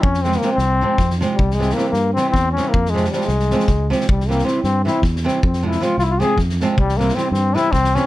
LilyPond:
<<
  \new Staff \with { instrumentName = "Trombone" } { \time 7/8 \tempo 4 = 156 des'8 c'8 bes8 c'4. r8 | g8 aes8 bes8 bes8 c'8 c'8 des'8 | bes8 aes8 g8 aes4. r8 | g8 bes8 c'8 c'8 e'8 r4 |
c'8 e'8 f'8 f'32 e'32 f'16 aes'8 r4 | g8 bes8 c'8 c'8 e'8 c'8 des'8 | }
  \new Staff \with { instrumentName = "Nylon-string guitar" } { \clef bass \time 7/8 r8 <c f aes c'>8 <c f aes c'>8 r8 <c f aes c'>8 r8 <c f aes c'>8 | r8 <c e g c'>8 <c e g c'>8 r8 <c e g c'>8 r8 <c e g c'>8 | r8 <c f aes c'>8 <c f aes c'>8 r8 <c f aes c'>8 r8 <c f aes c'>8 | r8 <c e g c'>8 <c e g c'>8 r8 <c e g c'>8 r8 <c e g c'>8 |
r8 <c f aes c'>8 <c f aes c'>8 r8 <c f aes c'>8 r8 <c f aes c'>8 | r8 <c e g c'>8 <c e g c'>8 r8 <c e g c'>8 r8 <c e g c'>8 | }
  \new Staff \with { instrumentName = "Fingered electric bass" } { \clef bass \time 7/8 f,4. c,4 f,4 | c,4. g,4 e,4 | f,4. c,4 des,4 | c,4. g,4 e,4 |
f,4. c,4 f,4 | c,4. g,4 c,4 | }
  \new DrumStaff \with { instrumentName = "Drums" } \drummode { \time 7/8 bd16 sn16 sn16 sn16 sn8 sn4 <bd sn>16 sn16 sn8 | bd16 sn16 sn16 sn16 sn8 sn8 sn8 <bd sn>8 sn8 | bd16 sn16 sn16 sn16 sn16 sn16 sn16 sn16 sn16 sn16 <bd sn>8 sn16 sn16 | bd16 sn16 sn16 sn16 sn8 sn8 sn8 <bd sn>16 sn16 sn8 |
bd16 sn8 sn16 sn8 sn8 sn8 <bd sn>16 sn16 sn8 | bd16 sn16 sn16 sn16 sn8 sn8 sn8 <bd sn>16 sn16 sn8 | }
>>